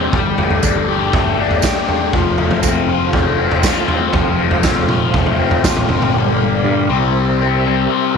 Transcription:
Already playing: distorted electric guitar C3 G3 C4 D4, tonewheel organ G4 C5 D5 G5
0.13 picked electric bass G1, distorted electric guitar G3, tonewheel organ A4 D5, kick, floor tom
0.38 distorted electric guitar A3, floor tom
0.50 floor tom
0.63 distorted electric guitar D4, kick, tambourine
0.89 distorted electric guitar G4
1.13 picked electric bass G1, distorted electric guitar A3, kick, floor tom
1.38 picked electric bass G1, distorted electric guitar D4
1.51 floor tom
1.62 distorted electric guitar G4, kick, snare, tambourine
1.88 distorted electric guitar D4, floor tom
2.13 picked electric bass F1, distorted electric guitar F3, tonewheel organ F4 A4 C5 F5, kick, floor tom
2.38 distorted electric guitar A3, floor tom
2.51 floor tom
2.63 distorted electric guitar C4, kick, tambourine
2.89 distorted electric guitar F4
3.13 picked electric bass F1, distorted electric guitar A3, kick, floor tom
3.38 picked electric bass F1, distorted electric guitar C4
3.51 floor tom
3.63 distorted electric guitar F4, kick, snare, tambourine
3.88 distorted electric guitar C4, floor tom
4.13 picked electric bass F1, distorted electric guitar F3, kick, floor tom
4.39 distorted electric guitar A3
4.51 floor tom
4.63 distorted electric guitar C4, kick, snare, tambourine
4.77 floor tom
4.88 distorted electric guitar F4, mid tom
5.14 picked electric bass F1, distorted electric guitar A3, kick, floor tom
5.26 floor tom
5.38 picked electric bass F1, distorted electric guitar C4
5.51 floor tom
5.64 picked electric bass A1, distorted electric guitar F4, kick, snare, tambourine
5.77 floor tom, mid tom
5.89 picked electric bass G1, distorted electric guitar C4, floor tom, mid tom
6.02 mid tom
6.14 picked electric bass G1, distorted electric guitar G2 D3 G3, tonewheel organ G4 A#4 D5 F5
6.65 picked electric bass G2
6.89 picked electric bass C2, distorted electric guitar C3 G3 C4, tonewheel organ G4 C5 E5
7.39 distorted electric guitar G3 C4
7.65 distorted electric guitar C3 G3 C4
7.90 distorted electric guitar G3 C4

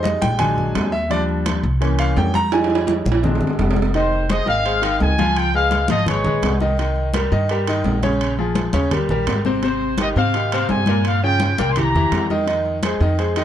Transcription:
Already playing: upright bass F2, upright piano G3 G#3 D#4
0.03 upright piano D#5, high conga, high timbale, low timbale
0.22 upright bass A#1, upright piano G5, high conga, high timbale
0.39 upright piano F#3 G#3 D4 G#5, high conga, low conga, high timbale
0.58 high conga, low conga
0.75 upright bass D#2, high conga, high timbale, low timbale
0.92 upright piano E5
1.10 upright piano F3 G3 D4 D5, high conga, high timbale
1.29 high conga
1.46 high conga, high timbale, low timbale
1.63 upright bass C2, high conga
1.81 upright piano E3 A#3 C#4, high conga, high timbale
1.99 upright piano F5, high conga, high timbale
2.17 upright bass F2, upright piano G5, high conga, low timbale
2.34 upright piano A#5, high conga, high timbale
2.52 upright piano G3 G#3 D#4 G#5, high timbale
2.64 high timbale
2.70 high conga
2.75 high timbale
2.87 high conga, high timbale
3.05 upright bass A#1, high conga
3.12 high timbale
3.23 upright piano G#3 C4 D4, high conga, low conga, low timbale
3.35 low timbale
3.41 upright bass G1, high conga, low conga
3.47 low timbale
3.59 upright bass F1, high conga, low timbale
3.71 low timbale
3.76 high conga
3.82 low timbale
3.94 upright piano D#3 D#4 D#5, trumpet section C5, high conga, high timbale
4.12 high conga
4.29 upright piano G#3 G#4 C5, trumpet section D#5, high conga, high timbale, low timbale
4.46 upright bass G#1, upright piano D#3 D#4 D#5, trumpet section F5, high conga
4.65 upright piano G#3 G#4 C5, high conga, high timbale
4.82 upright piano D#3 D#4 D#5, high conga, high timbale
5.00 upright bass C#2, trumpet section G#5, high conga, low timbale
5.18 upright piano F3 F4 F5, high conga, high timbale
5.36 trumpet section G5, high conga, high timbale
5.54 upright piano G#3 G#4 B4, trumpet section F5, high conga
5.71 high conga, high timbale, low timbale
5.88 upright bass G#1, upright piano F3 F4 F5, trumpet section D#5, high conga, high timbale
6.06 upright piano G#3 G#4 B4, trumpet section C#5, high conga, low conga, high timbale
6.24 upright bass A#1, upright piano G#3 G#4 B4, high conga, low conga
6.42 upright bass C2, high conga, high timbale, low timbale
6.60 upright piano D#3 D#4 D#5, high conga
6.78 upright piano D#3 D#4 D#5, high conga, high timbale
6.96 high conga
7.14 upright piano G3 G4 A#4, high conga, high timbale, low timbale
7.32 upright bass G2, upright piano D#3 D#4 D#5, high conga
7.49 upright piano G3 G4 A#4, high conga, high timbale
7.67 upright piano D#3 D#4 D#5, high conga, high timbale
7.84 upright bass A#1, high conga, low timbale
8.03 upright piano C#3 C#4 C#5, high conga, high timbale
8.21 high conga, high timbale
8.38 upright piano F3 F4 G#4, high conga
8.55 high conga, high timbale, low timbale
8.73 upright bass D#2, upright piano C#3 C#4 C#5, high conga, high timbale
8.91 upright piano G3 G4 A#4, high conga, low conga, high timbale
9.09 upright bass A#1, upright piano G3 G4 A#4, high conga, low conga
9.27 upright bass G#1, high conga, high timbale, low timbale
9.45 upright piano C3 C4 C5, high conga
9.63 upright piano C3 C4 C5, trumpet section C5, high conga, high timbale
9.81 high conga
9.98 upright piano D#3 D#4 G4, high conga, high timbale, low timbale
10.02 trumpet section D#5
10.16 upright bass G#2, upright piano C3 C4 C5, trumpet section F5, high conga
10.33 upright piano D#3 D#4 G4, high conga, high timbale
10.51 upright piano C3 C4 C5, high conga, high timbale
10.69 upright bass G2, trumpet section G#5, high conga, low timbale
10.86 upright piano A#2 A#3 A#4, high conga, high timbale
11.04 trumpet section F5, high conga, high timbale
11.23 upright piano C#3 C#4 F4, trumpet section G5, high conga
11.40 high conga, high timbale, low timbale
11.58 upright bass C2, upright piano A#2 A#3 A#4, trumpet section G5, high conga, high timbale
11.71 trumpet section C6
11.76 upright piano E3 E4 G4, trumpet section A#5, high conga, low conga, high timbale
11.94 upright bass E2, upright piano E3 E4 G4, high conga, low conga
12.12 upright bass F2, high conga, high timbale, low timbale
12.30 upright piano D#3 D#4 D#5, high conga
12.47 upright piano D#3 D#4 D#5, high conga, high timbale
12.66 high conga
12.83 upright piano G#3 G#4 C5, high conga, high timbale, low timbale
13.00 upright bass F2, upright piano D#3 D#4 D#5, high conga
13.19 upright piano G#3 G#4 C5, high conga, high timbale
13.36 upright piano D#3 D#4 D#5, high conga, high timbale

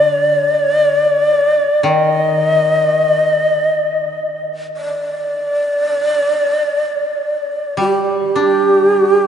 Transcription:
Already playing: koto D3, shakuhachi D5
1.83 koto D#3
1.88 shakuhachi D#5
4.77 shakuhachi D5
7.77 koto G3, shakuhachi G4
8.36 koto D4

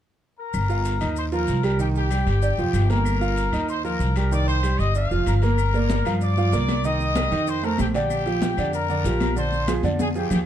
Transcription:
0.39 trumpet section A#4 A#5
0.54 upright bass G1, long guiro, claves, maracas
0.69 grand piano F4 F5, maracas
0.85 short guiro, maracas
1.01 upright bass D#2, grand piano D#4 D#5, short guiro, claves, maracas
1.16 trumpet section C5 C6, long guiro, maracas
1.32 grand piano F3 F4, trumpet section A#4 A#5, maracas
1.48 upright bass C2, short guiro, maracas
1.63 grand piano G3 G4, trumpet section A#4 A#5, short guiro, claves, maracas
1.79 grand piano D#3 D#4, trumpet section G4 G5, long guiro, maracas
1.95 trumpet section G4 G5, maracas
2.11 grand piano G3 G4, short guiro, claves, maracas
2.26 upright bass G1, short guiro, maracas
2.42 grand piano D4 D5, long guiro, maracas
2.58 upright bass F1, grand piano F3 F4, maracas
2.73 upright bass G1, short guiro, claves, maracas
2.90 grand piano A#3 A#4, trumpet section A#4 A#5, short guiro, maracas
3.05 long guiro, claves, maracas
3.21 grand piano F4 F5, maracas
3.37 short guiro, maracas
3.52 upright bass D#2, grand piano D#4 D#5, short guiro, claves, maracas
3.69 trumpet section C5 C6, long guiro, maracas
3.84 grand piano F3 F4, trumpet section A#4 A#5, maracas
4.00 upright bass C2, short guiro, maracas
4.16 grand piano G3 G4, trumpet section A#4 A#5, short guiro, claves, maracas
4.31 grand piano D#3 D#4, trumpet section D5 D6, long guiro, maracas
4.48 trumpet section C5 C6, maracas
4.63 grand piano G3 G4, short guiro, claves, maracas
4.79 upright bass G1, trumpet section D#5 D#6, short guiro, maracas
4.95 grand piano D4 D5, trumpet section F5, long guiro, maracas
5.11 upright bass F1, grand piano F3 F4, maracas
5.27 upright bass G1, trumpet section A#4 A#5, short guiro, claves, maracas
5.42 grand piano A#3 A#4, trumpet section A#4 A#5, short guiro, maracas
5.58 high conga, long guiro, claves, maracas
5.74 grand piano A#3 A#4 D5, high conga, maracas
5.90 high conga, short guiro, maracas
6.05 upright bass G2, grand piano F3 F4 F5, high conga, short guiro, claves, maracas
6.21 trumpet section D5 D6, high conga, long guiro, maracas
6.37 grand piano F3 F4 F5, high conga, maracas
6.52 upright bass C2, grand piano A#3 A#4 D5, high conga, short guiro, maracas
6.68 high conga, short guiro, claves, maracas
6.84 grand piano D#3 D#4 D#5, trumpet section D#5 D#6, high conga, long guiro, maracas
7.00 high conga, maracas
7.16 grand piano G3 G4 A#4, high conga, short guiro, claves, maracas
7.31 upright bass F2, grand piano D#3 D#4 D#5, high conga, short guiro, maracas
7.47 trumpet section C5 C6, high conga, long guiro, maracas
7.63 grand piano A3 A4 C5, trumpet section A#4 A#5, high conga, maracas
7.78 upright bass A#1, trumpet section G4 G5, high conga, short guiro, claves, maracas
7.94 grand piano D3 D4 D5, trumpet section G4 G5, high conga, short guiro, maracas
8.10 high conga, long guiro, claves, maracas
8.26 grand piano F3 F4 G4, high conga, maracas
8.42 high conga, short guiro, maracas
8.57 upright bass F2, grand piano D3 D4 D5, high conga, short guiro, claves, maracas
8.73 trumpet section A#4 A#5, high conga, long guiro, maracas
8.89 grand piano D3 D4 D5, high conga, maracas
9.04 upright bass A#1, grand piano F3 F4 G4, high conga, short guiro, maracas
9.20 high conga, short guiro, claves, maracas
9.36 grand piano D3 D4 D5, trumpet section C5 C6, high conga, long guiro, maracas
9.52 high conga, maracas
9.68 grand piano F3 F4 G#4, high conga, short guiro, claves, maracas
9.83 upright bass F2, grand piano D3 D4 D5, high conga, short guiro, maracas
9.99 trumpet section G#4 G#5, high conga, long guiro, maracas
10.15 grand piano F3 F4 G#4, trumpet section G4 G5, maracas
10.30 upright bass D#2, trumpet section G4 G5, low conga, short guiro, claves, maracas

